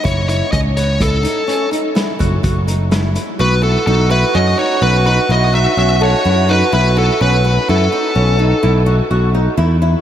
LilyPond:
<<
  \new Staff \with { instrumentName = "Lead electric guitar" } { \time 7/4 \key b \mixolydian \tempo 4 = 126 cis''8 cis''8 dis''8 cis''8 a'4. r2. r8 | b'8 a'8 a'8 b'8 dis''8 cis''8 b'8 b'8 dis''8 e''8 e''8 cis''4 b'8 | b'8 a'8 b'4 a'2. r2 | }
  \new Staff \with { instrumentName = "Flugelhorn" } { \time 7/4 \key b \mixolydian r1. r4 | fis'1.~ fis'4~ | fis'1.~ fis'8 r8 | }
  \new Staff \with { instrumentName = "Nylon-string guitar" } { \time 7/4 \key b \mixolydian e'8 e'8 cis'8 b8 e'8 dis'8 cis'8 dis'8 e'8 fis'8 fis'8 dis'8 e'8 e'8 | fis'8 e'8 dis'8 e'8 cis'8 dis'8 cis'8 dis'8 e'8 dis'8 cis'8 a'8 e'8 dis'8 | e'8 e'8 cis'8 b8 e'8 dis'8 cis'8 dis'8 e'8 fis'8 fis'8 dis'8 e'8 e'8 | }
  \new Staff \with { instrumentName = "Picked electric bass" } { \clef bass \time 7/4 \key b \mixolydian fis,,4 cis,2 r4. fis,,8 fis,,2 | b,,4 b,,4 fis,8 r8 b,,4 b,,4 b,,4 fis,4 | b,,4 b,,4 fis,8 r8 b,,4 b,,4 b,,4 e,4 | }
  \new DrumStaff \with { instrumentName = "Drums" } \drummode { \time 7/4 <hh bd>8 hh8 <hh bd>8 hh8 <hh bd>8 hh8 hh8 hh8 <hh sn>8 <hh bd>8 <hh bd>8 hh8 <hh sn>8 hh8 | r4 r4 r4 r4 r4 r4 r4 | r4 r4 r4 r4 r4 r4 r4 | }
>>